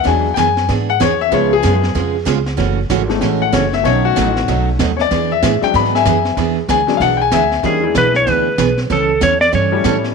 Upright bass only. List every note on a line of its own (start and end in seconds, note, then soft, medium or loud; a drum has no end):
0.06 0.36 E2 medium
0.37 0.68 F#2 loud
0.69 0.99 G#2 medium
1.01 1.31 E2 loud
1.32 1.62 C#2 medium
1.64 1.94 F#2 loud
1.95 2.26 F2 medium
2.26 2.57 C#2 medium
2.58 2.89 F#1 medium
2.90 3.20 G#1 loud
3.22 3.52 A1 medium
3.53 3.84 F#1 loud
3.85 4.15 B1 medium
4.17 4.47 A1 loud
4.48 4.78 B1 medium
4.79 5.10 D#2 loud
5.11 5.41 E2 loud
5.42 5.61 A2 loud
5.62 muted upright bass stroke soft
5.74 6.04 G#2 medium
6.06 6.36 F#2 medium
6.37 6.68 E2 medium
6.68 6.99 D2 loud
7.00 7.31 B1 medium
7.32 7.62 D2 loud
7.63 7.94 E2 medium
7.95 8.25 B1 loud
8.27 8.57 D2 medium
8.58 8.89 B1 medium
8.90 9.20 C#2 medium
9.21 9.52 E2 loud
9.53 9.84 G2 medium
9.85 10.14 A2 medium